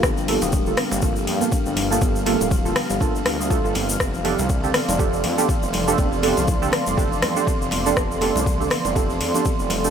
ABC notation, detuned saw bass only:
X:1
M:4/4
L:1/16
Q:"Swing 16ths" 1/4=121
K:Fmix
V:1 name="Detuned saw bass" clef=bass
G,,,3 D,,,3 z G,,,3 G,, z2 G,,,3 | z3 D,,,3 z G,,,3 D,,3 G,,,3 | z3 C,,3 z F,,,3 F,, z2 F,,,3 | F,,,3 C,,3 z F,,,3 F,, z2 F,,,3 |
z3 C,,3 z F,,,3 F,, z2 F,,,3 |]